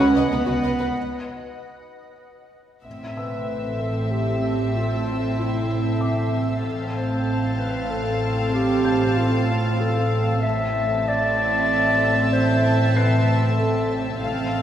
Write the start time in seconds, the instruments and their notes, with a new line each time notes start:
Already playing: cello section C#4, ambient pad B4 D#5 F#5, violin section F#5, felt piano D#6
0.00 double bass section C#2, viola section B4, felt piano B4 B5
0.16 double bass section C#2, viola section B4, violin section D#5
0.32 double bass section C#2, cello section B3, violin section B4, viola section B4
0.47 double bass section C#2, violin section F#4, viola section B4
0.63 double bass section C#2, viola section B4, violin section D#5
0.79 double bass section C#2, violin section B4, viola section B4
2.84 double bass section A1, cello section A2, ambient pad C4 A4 E5, viola section C4, violin section E5
3.17 clarinet B4, felt piano E5 E6
3.81 clarinet A4
4.11 clarinet G4
4.76 clarinet F4
5.38 clarinet E4
6.01 felt piano D6
6.63 double bass section A1, cello section A2, ambient pad C4 A4 F5, viola section C4, violin section F5 A5
6.95 clarinet C5
7.59 clarinet B4
7.91 clarinet A4
8.54 clarinet G4
8.85 felt piano G6
9.18 clarinet F4
9.81 clarinet A4
10.42 double bass section A1, cello section A2, viola section C4, ambient pad C4 A4 E5, clarinet E5, violin section E5 A5
11.08 clarinet D5
12.33 clarinet C5
12.96 clarinet B4, felt piano A5 C7
13.59 clarinet A4
14.22 double bass section A1, cello section A2, viola section C4, violin section F5 A5, ambient pad F5
14.54 clarinet A4